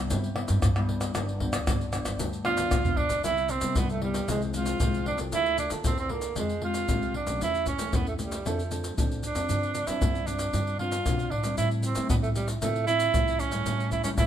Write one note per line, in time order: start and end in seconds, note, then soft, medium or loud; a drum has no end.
0.10 0.45 G2 medium
0.10 0.61 C3 medium
0.10 0.26 G3 medium
0.10 0.27 B3 medium
0.10 0.27 E4 medium
0.10 pandeiro medium
0.10 maracas medium
0.10 surdo medium
0.24 pandeiro soft
0.24 maracas soft
0.36 0.72 G3 medium
0.36 0.72 B3 medium
0.36 0.72 E4 medium
0.36 pandeiro medium
0.36 tamborim medium
0.48 0.61 G2 medium
0.48 pandeiro medium
0.48 maracas medium
0.62 1.13 G2 medium
0.62 1.08 G2 medium
0.62 pandeiro medium
0.62 tamborim medium
0.62 maracas medium
0.62 surdo loud
0.76 1.12 G3 medium
0.76 1.12 B3 medium
0.76 1.12 E4 medium
0.76 pandeiro soft
0.76 tamborim medium
0.76 maracas soft
0.89 pandeiro medium
1.01 pandeiro medium
1.01 tamborim medium
1.01 maracas medium
1.15 1.54 G1 loud
1.15 1.65 G2 soft
1.15 1.31 F3 medium
1.15 1.31 B3 soft
1.15 1.31 D4 medium
1.15 pandeiro medium
1.15 tamborim medium
1.15 maracas medium
1.15 surdo medium
1.29 pandeiro soft
1.29 maracas soft
1.40 1.56 F3 medium
1.40 1.57 B3 medium
1.40 1.57 D4 medium
1.40 pandeiro medium
1.40 surdo medium
1.53 1.65 D2 medium
1.53 pandeiro medium
1.53 tamborim medium
1.53 maracas medium
1.67 2.01 G1 medium
1.67 2.17 D3 soft
1.67 1.83 F3 soft
1.67 1.83 B3 soft
1.67 1.83 D4 medium
1.67 pandeiro medium
1.67 tamborim medium
1.67 maracas medium
1.67 surdo loud
1.81 pandeiro soft
1.81 maracas soft
1.92 2.27 F3 medium
1.92 2.27 B3 medium
1.92 2.27 D4 medium
1.92 pandeiro medium
1.92 tamborim medium
1.92 maracas medium
2.05 2.17 G1 medium
2.05 pandeiro medium
2.05 tamborim medium
2.05 maracas medium
2.19 2.53 D2 medium
2.19 2.69 G2 medium
2.19 pandeiro medium
2.19 maracas medium
2.19 surdo medium
2.33 pandeiro soft
2.33 maracas soft
2.44 2.80 F3 soft
2.44 2.80 B3 medium
2.44 2.80 D4 medium
2.44 2.98 F4 loud
2.44 pandeiro medium
2.44 tamborim medium
2.57 2.71 D2 loud
2.57 pandeiro medium
2.57 maracas medium
2.71 3.16 B1 medium
2.71 3.21 D3 medium
2.71 pandeiro medium
2.71 tamborim medium
2.71 maracas medium
2.71 surdo loud
2.84 3.19 F3 medium
2.84 3.20 B3 medium
2.84 3.20 D4 medium
2.84 surdo medium
2.84 pandeiro soft
2.84 maracas soft
2.97 3.23 D4 loud
2.97 pandeiro medium
2.97 surdo medium
3.10 pandeiro medium
3.10 maracas medium
3.10 surdo medium
3.23 3.57 C2 medium
3.23 3.73 C3 medium
3.23 3.48 G3 soft
3.23 3.48 B3 soft
3.23 3.52 E4 loud
3.23 3.49 E4 soft
3.23 pandeiro medium
3.23 maracas medium
3.23 surdo medium
3.37 pandeiro soft
3.37 maracas soft
3.49 3.79 C4 medium
3.49 pandeiro medium
3.49 maracas medium
3.61 3.73 C3 medium
3.61 3.98 G3 medium
3.61 3.98 B3 medium
3.61 3.98 E4 medium
3.61 pandeiro medium
3.61 maracas medium
3.75 4.20 C2 medium
3.75 4.26 G2 medium
3.75 3.90 B3 medium
3.75 pandeiro medium
3.75 maracas medium
3.75 surdo loud
3.89 4.02 A3 medium
3.89 pandeiro soft
3.89 maracas soft
4.02 4.19 G3 medium
4.02 4.27 G3 medium
4.02 4.19 B3 medium
4.02 4.19 E4 medium
4.02 pandeiro medium
4.14 pandeiro medium
4.14 maracas medium
4.28 4.72 C2 loud
4.28 4.78 F2 medium
4.28 4.50 C3 medium
4.28 4.50 F3 medium
4.28 4.51 G#3 medium
4.28 4.42 G#3 medium
4.28 4.51 C4 medium
4.28 pandeiro medium
4.28 maracas medium
4.28 surdo medium
4.42 pandeiro soft
4.42 maracas soft
4.54 4.76 C3 soft
4.54 4.76 F3 soft
4.54 4.77 G#3 medium
4.54 4.77 C4 medium
4.54 5.03 F4 loud
4.54 pandeiro medium
4.54 maracas medium
4.66 pandeiro medium
4.66 maracas medium
4.80 5.13 C2 medium
4.80 5.30 F2 soft
4.80 5.16 C3 medium
4.80 5.16 F3 medium
4.80 5.16 G#3 medium
4.80 5.16 C4 medium
4.80 pandeiro medium
4.80 maracas medium
4.80 surdo medium
4.94 pandeiro soft
4.94 maracas soft
5.06 5.19 D4 medium
5.06 pandeiro medium
5.18 5.30 C2 medium
5.18 5.67 A#3 medium
5.18 5.67 F4 medium
5.18 5.67 A4 medium
5.18 pandeiro medium
5.18 maracas medium
5.32 5.66 D2 medium
5.32 5.82 D3 medium
5.32 5.58 E4 loud
5.32 pandeiro medium
5.32 maracas medium
5.32 surdo medium
5.46 pandeiro soft
5.46 maracas soft
5.58 5.71 D4 medium
5.58 pandeiro medium
5.58 maracas medium
5.70 5.82 D3 medium
5.70 6.06 A#3 medium
5.70 6.06 F4 medium
5.70 6.07 A4 medium
5.70 pandeiro medium
5.70 maracas medium
5.84 6.29 E2 medium
5.84 6.34 D3 soft
5.84 5.98 C4 medium
5.84 pandeiro medium
5.84 maracas medium
5.84 surdo loud
5.98 6.13 C4 medium
5.98 pandeiro soft
5.98 maracas soft
6.09 6.28 A#3 medium
6.09 6.37 A#3 medium
6.09 6.28 F4 soft
6.09 6.28 A4 medium
6.09 pandeiro medium
6.22 pandeiro medium
6.22 maracas medium
6.36 6.82 F2 medium
6.36 6.86 F3 medium
6.36 6.52 G#3 medium
6.36 6.62 G#3 medium
6.36 6.52 C4 medium
6.36 6.53 G4 medium
6.36 pandeiro medium
6.36 maracas medium
6.36 surdo medium
6.49 pandeiro soft
6.49 maracas soft
6.62 6.85 G#3 medium
6.62 6.85 C4 soft
6.62 7.12 F4 loud
6.62 6.85 G4 medium
6.62 pandeiro medium
6.74 pandeiro medium
6.74 maracas medium
6.88 7.22 C2 medium
6.88 7.38 C3 medium
6.88 7.14 G#3 medium
6.88 7.14 C4 soft
6.88 7.14 G4 medium
6.88 pandeiro medium
6.88 maracas medium
6.88 surdo medium
7.02 pandeiro soft
7.02 maracas soft
7.14 7.40 D4 medium
7.14 pandeiro medium
7.26 7.38 B1 medium
7.26 7.75 A3 medium
7.26 7.75 C#4 medium
7.26 7.76 G4 medium
7.26 pandeiro medium
7.26 maracas medium
7.41 7.74 E2 medium
7.41 7.91 E3 medium
7.41 7.66 E4 loud
7.41 pandeiro medium
7.41 maracas medium
7.41 surdo medium
7.55 pandeiro soft
7.55 maracas soft
7.66 7.97 C#4 medium
7.66 pandeiro medium
7.66 maracas medium
7.66 surdo medium
7.79 7.90 E3 medium
7.79 8.15 A3 medium
7.79 8.15 C#4 medium
7.79 8.15 G4 medium
7.79 pandeiro medium
7.79 maracas medium
7.93 8.37 E2 medium
7.93 8.43 E3 medium
7.93 8.07 B3 medium
7.93 pandeiro medium
7.93 maracas medium
7.93 surdo loud
8.07 8.13 A3 medium
8.07 pandeiro soft
8.07 maracas soft
8.19 8.48 G3 medium
8.19 8.36 A3 soft
8.19 8.36 C#4 soft
8.19 8.37 G4 medium
8.19 pandeiro medium
8.19 maracas medium
8.32 pandeiro medium
8.32 maracas medium
8.45 8.89 F2 medium
8.45 8.95 F3 medium
8.45 8.72 A3 medium
8.45 8.61 C4 medium
8.45 8.61 D4 medium
8.45 8.61 A4 medium
8.45 pandeiro medium
8.45 maracas medium
8.45 surdo medium
8.59 pandeiro soft
8.59 maracas soft
8.71 8.93 C4 medium
8.71 8.93 D4 soft
8.71 8.94 A4 medium
8.71 pandeiro medium
8.71 maracas medium
8.84 pandeiro medium
8.84 maracas medium
8.97 9.31 A1 medium
8.97 9.34 F3 medium
8.97 9.22 C4 medium
8.97 9.22 D4 medium
8.97 9.23 A4 medium
8.97 pandeiro medium
8.97 maracas medium
8.97 surdo medium
9.11 pandeiro soft
9.11 maracas soft
9.23 9.89 D4 medium
9.23 pandeiro soft
9.23 maracas medium
9.35 9.47 F2 medium
9.35 9.84 F3 medium
9.35 9.84 C4 medium
9.35 9.84 D4 medium
9.35 pandeiro medium
9.35 maracas medium
9.49 9.83 G2 medium
9.49 9.99 G2 soft
9.49 pandeiro medium
9.49 maracas medium
9.49 surdo medium
9.63 pandeiro soft
9.63 maracas soft
9.75 pandeiro soft
9.75 maracas medium
9.87 10.23 F3 medium
9.87 9.99 G3 medium
9.87 10.23 C4 medium
9.87 10.23 D4 medium
9.87 10.28 E4 medium
9.87 pandeiro medium
9.87 maracas medium
10.02 10.46 G2 medium
10.02 10.51 D3 soft
10.02 pandeiro medium
10.02 maracas medium
10.02 surdo loud
10.15 pandeiro soft
10.15 maracas soft
10.27 10.75 F3 soft
10.27 10.76 C4 medium
10.27 10.78 D4 medium
10.27 10.76 D4 medium
10.27 pandeiro medium
10.27 maracas medium
10.39 pandeiro medium
10.39 maracas medium
10.53 10.98 G2 medium
10.53 11.04 G2 medium
10.53 pandeiro medium
10.53 maracas medium
10.53 surdo medium
10.67 pandeiro soft
10.67 maracas soft
10.79 10.95 F3 medium
10.79 10.95 C4 medium
10.79 10.96 D4 medium
10.79 11.32 F4 loud
10.79 pandeiro medium
10.92 pandeiro medium
10.92 maracas medium
11.06 11.29 B2 medium
11.06 11.55 D3 medium
11.06 11.30 F3 medium
11.06 11.31 C4 medium
11.06 11.31 D4 medium
11.06 pandeiro medium
11.06 maracas medium
11.06 surdo medium
11.19 pandeiro soft
11.19 maracas soft
11.31 11.55 A2 medium
11.31 11.57 D4 medium
11.31 pandeiro medium
11.44 11.92 G3 medium
11.44 11.93 C4 medium
11.44 11.93 E4 medium
11.44 pandeiro medium
11.44 maracas medium
11.58 11.91 A2 medium
11.58 12.08 A2 soft
11.58 11.69 E4 medium
11.58 pandeiro medium
11.58 maracas medium
11.58 surdo soft
11.71 pandeiro soft
11.71 maracas soft
11.83 12.08 C4 medium
11.83 pandeiro medium
11.83 maracas medium
11.95 12.31 G3 soft
11.95 12.08 A3 medium
11.95 12.32 C4 medium
11.95 12.32 E4 medium
11.95 pandeiro medium
11.95 maracas medium
12.10 12.54 A2 medium
12.10 12.60 E3 soft
12.10 12.16 B3 medium
12.10 pandeiro medium
12.10 maracas medium
12.10 surdo loud
12.23 12.28 A3 medium
12.23 pandeiro soft
12.23 maracas soft
12.35 12.47 G3 medium
12.35 12.53 G3 medium
12.35 12.53 C4 soft
12.35 12.53 E4 medium
12.35 pandeiro medium
12.35 maracas medium
12.48 pandeiro medium
12.48 maracas medium
12.62 13.06 A2 medium
12.62 13.12 A2 medium
12.62 12.85 F3 medium
12.62 12.86 A3 medium
12.62 12.85 C4 medium
12.62 12.85 E4 medium
12.62 pandeiro medium
12.62 maracas medium
12.62 surdo medium
12.76 pandeiro soft
12.76 maracas soft
12.87 13.10 F3 soft
12.87 13.10 C4 soft
12.87 13.41 E4 loud
12.87 13.11 E4 medium
12.87 pandeiro medium
12.87 maracas medium
13.00 pandeiro medium
13.00 maracas medium
13.14 13.47 C2 medium
13.14 13.64 A2 medium
13.14 13.50 F3 medium
13.14 13.50 C4 medium
13.14 13.50 E4 medium
13.14 pandeiro medium
13.14 maracas medium
13.14 surdo loud
13.28 pandeiro soft
13.28 maracas soft
13.39 13.91 C#4 medium
13.39 pandeiro medium
13.39 maracas medium
13.52 13.64 A2 medium
13.52 14.01 G3 medium
13.52 14.01 C#4 medium
13.52 14.01 E4 medium
13.52 pandeiro medium
13.52 maracas medium
13.66 13.99 A2 medium
13.66 14.16 A2 soft
13.66 pandeiro medium
13.66 maracas medium
13.66 surdo medium
13.80 pandeiro soft
13.80 maracas soft
13.92 14.03 E4 medium
13.92 pandeiro medium
13.92 maracas medium
13.92 surdo medium
14.04 14.27 G3 medium
14.04 14.16 A3 medium
14.04 14.10 C#4 medium
14.04 14.27 C#4 medium
14.04 14.27 E4 medium
14.04 pandeiro medium
14.04 maracas medium
14.18 14.27 A2 medium
14.18 14.27 E3 medium
14.18 14.24 E4 loud
14.18 pandeiro medium
14.18 maracas medium
14.18 surdo loud